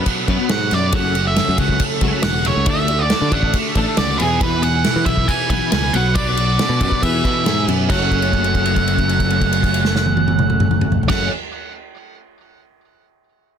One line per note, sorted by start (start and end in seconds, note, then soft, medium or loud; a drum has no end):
0.00 0.27 B3 medium
0.00 0.72 D4 medium
0.00 0.50 F#4 medium
0.06 0.26 B2 medium
0.06 3.56 F#3 medium
0.06 0.27 F#3 medium
0.06 kick medium
0.06 ride medium
0.28 0.37 F#2 medium
0.28 0.49 B2 medium
0.28 0.49 F#3 medium
0.28 0.71 B3 medium
0.28 0.49 B3 medium
0.28 kick medium
0.28 ride medium
0.49 0.70 G#2 medium
0.49 0.70 B2 medium
0.49 0.70 F#3 medium
0.49 1.15 F#4 medium
0.49 0.73 F#5 loud
0.49 snare loud
0.49 ride medium
0.71 0.92 F#2 medium
0.71 0.92 B2 medium
0.71 0.92 F#3 medium
0.71 0.93 B3 medium
0.71 0.95 D5 medium
0.71 snare soft
0.71 ride medium
0.93 1.39 F#1 loud
0.93 1.14 F#2 medium
0.93 1.14 C#3 loud
0.93 1.15 F#3 loud
0.93 1.57 A3 medium
0.93 1.24 F#5 loud
0.93 kick loud
0.93 ride loud
1.15 1.35 F#2 medium
1.15 1.35 C#3 medium
1.15 2.22 F#4 medium
1.15 ride medium
1.27 1.59 E5 medium
1.36 1.57 F#2 medium
1.36 1.57 C#3 medium
1.36 2.46 C#4 medium
1.36 snare medium
1.36 ride medium
1.48 1.57 F#2 medium
1.58 1.77 C#2 medium
1.58 1.79 F#2 medium
1.58 1.79 C#3 medium
1.58 1.80 F#3 loud
1.58 1.78 A3 medium
1.58 1.79 F#5 medium
1.58 kick medium
1.58 ride medium
1.69 kick medium
1.80 2.00 F#2 medium
1.80 2.00 C#3 medium
1.80 2.01 A3 medium
1.80 kick loud
1.80 ride loud
2.01 2.11 C#2 medium
2.01 2.22 F#2 medium
2.01 2.23 C#3 medium
2.01 2.23 F#3 loud
2.01 2.43 A3 medium
2.01 kick medium
2.01 ride medium
2.23 2.51 E1 loud
2.23 2.44 F#2 medium
2.23 2.44 C#3 medium
2.23 2.67 F#4 medium
2.23 2.46 F#5 loud
2.23 snare loud
2.23 ride medium
2.44 2.66 F#2 medium
2.44 2.66 C#3 medium
2.44 2.65 A3 medium
2.44 2.69 C#5 medium
2.44 snare soft
2.44 ride medium
2.56 2.66 C#2 medium
2.66 3.13 D2 medium
2.66 2.88 D3 medium
2.66 3.31 A3 medium
2.66 2.88 A3 medium
2.66 2.89 D4 medium
2.66 3.01 E5 loud
2.66 kick loud
2.66 ride medium
2.88 3.09 D3 medium
2.88 3.09 A3 medium
2.88 3.96 F#4 medium
2.88 ride medium
2.99 3.33 D5 medium
3.10 3.31 D3 medium
3.10 3.31 A3 medium
3.10 4.20 D4 medium
3.10 snare medium
3.10 ride medium
3.21 3.31 D3 medium
3.32 3.50 A1 loud
3.32 3.53 D3 medium
3.32 3.53 A3 medium
3.32 3.54 D4 medium
3.32 3.53 F#5 medium
3.32 kick medium
3.32 ride medium
3.43 kick medium
3.54 3.74 D3 medium
3.54 3.75 A3 medium
3.54 3.74 A3 medium
3.54 kick medium
3.54 ride medium
3.75 3.85 A1 medium
3.75 3.96 D3 medium
3.75 4.20 A3 medium
3.75 3.97 A3 medium
3.75 3.98 D4 medium
3.75 kick medium
3.75 ride medium
3.97 4.17 C#2 loud
3.97 4.18 D3 medium
3.97 4.18 A3 medium
3.97 4.20 F#4 medium
3.97 4.20 D5 loud
3.97 snare loud
3.97 ride medium
4.18 4.84 E2 loud
4.18 4.41 E2 medium
4.18 4.41 B2 medium
4.18 4.40 E3 medium
4.18 4.41 E3 medium
4.18 4.42 G#4 medium
4.18 ride medium
4.41 4.62 E2 medium
4.41 4.63 B2 medium
4.41 5.27 E3 medium
4.41 4.63 E3 medium
4.41 4.62 B4 loud
4.41 kick loud
4.41 ride medium
4.62 4.83 E2 medium
4.62 4.84 B2 medium
4.62 5.70 G#4 medium
4.62 5.06 F#5 loud
4.62 ride medium
4.84 5.05 E2 medium
4.84 5.06 B2 medium
4.84 5.94 E4 medium
4.84 snare loud
4.84 ride medium
4.96 5.05 E3 medium
5.06 5.25 B1 loud
5.06 5.27 E2 medium
5.06 5.28 B2 medium
5.06 5.28 E3 loud
5.06 5.48 B3 medium
5.06 5.29 E5 medium
5.06 kick medium
5.06 ride medium
5.17 kick medium
5.28 5.49 E2 medium
5.28 5.49 B2 medium
5.28 5.94 E3 medium
5.28 5.49 G#5 loud
5.28 kick loud
5.28 ride medium
5.49 5.59 B1 medium
5.49 5.72 E2 medium
5.49 5.72 B2 loud
5.49 5.72 E3 medium
5.49 5.94 B3 medium
5.49 5.71 G#5 loud
5.49 kick medium
5.49 ride medium
5.72 5.90 C#2 loud
5.72 5.93 B2 medium
5.72 5.94 G#4 medium
5.72 5.95 G#5 loud
5.72 snare loud
5.72 ride loud
5.93 6.57 B1 loud
5.93 6.15 B2 medium
5.93 6.14 F#3 medium
5.93 6.16 F#3 medium
5.93 6.16 B3 medium
5.93 6.16 F#5 medium
5.93 ride medium
6.15 6.37 B2 medium
6.15 7.02 F#3 medium
6.15 6.37 F#3 medium
6.15 6.37 B3 loud
6.15 7.05 D5 loud
6.15 kick loud
6.15 ride medium
6.37 6.58 B2 medium
6.37 6.58 F#3 medium
6.37 7.03 F#4 medium
6.37 ride medium
6.59 6.79 B2 medium
6.59 6.79 F#3 medium
6.59 7.02 D4 medium
6.59 snare medium
6.59 ride medium
6.69 6.79 B2 loud
6.81 6.90 F#2 medium
6.81 7.02 B2 medium
6.81 7.02 F#3 medium
6.81 7.03 B3 medium
6.81 kick medium
6.81 ride medium
6.92 kick medium
7.02 7.21 E2 loud
7.02 7.24 E2 medium
7.02 7.24 B2 medium
7.02 7.89 E3 medium
7.02 7.24 E3 medium
7.02 7.64 E5 medium
7.02 kick medium
7.02 ride loud
7.24 7.45 E2 medium
7.24 7.44 B2 medium
7.24 7.46 B2 medium
7.24 7.46 E3 loud
7.24 7.67 B3 medium
7.24 kick medium
7.24 ride medium
7.46 7.66 E2 medium
7.46 7.66 G#2 medium
7.46 7.67 B2 medium
7.46 7.90 G#4 medium
7.46 snare loud
7.46 ride medium
7.68 7.88 E2 medium
7.68 7.87 F#2 medium
7.68 7.88 B2 medium
7.68 7.90 B3 medium
7.68 ride medium
7.89 11.01 F#1 medium
7.89 11.08 F#2 loud
7.89 11.09 C#3 medium
7.89 11.08 F#3 loud
7.89 11.10 F#3 loud
7.89 11.10 A3 medium
7.89 11.11 A3 medium
7.89 11.12 C#4 medium
7.89 11.12 F#4 loud
7.89 11.01 F#5 loud
7.89 kick loud
7.89 crash medium
7.93 11.12 C#4 loud
8.11 kick medium
8.11 crash soft
8.22 crash soft
8.33 kick medium
8.33 crash soft
8.44 crash soft
8.55 kick medium
8.55 crash soft
8.66 crash soft
8.76 kick medium
8.76 crash soft
8.88 crash soft
8.98 kick medium
8.98 crash soft
9.09 crash soft
9.20 kick medium
9.20 crash medium
9.30 crash soft
9.41 kick medium
9.41 crash soft
9.53 crash medium
9.63 kick medium
9.63 crash medium
9.74 crash medium
9.85 snare medium
9.96 snare loud
10.06 high tom medium
10.17 high tom medium
10.28 high tom medium
10.39 mid tom loud
10.50 mid tom medium
10.60 mid tom loud
10.71 mid tom medium
10.81 mid tom loud
10.92 floor tom loud
11.03 floor tom medium
11.08 11.28 F#1 loud
11.08 11.29 F#2 medium
11.08 11.29 C#3 medium
11.08 11.29 F#3 loud
11.08 11.30 F#3 loud
11.08 11.30 A3 loud
11.08 11.30 C#4 loud
11.08 11.28 F#5 medium
11.08 kick loud
11.08 snare loud
11.08 crash medium
11.13 11.31 C#4 loud
11.13 11.31 F#4 medium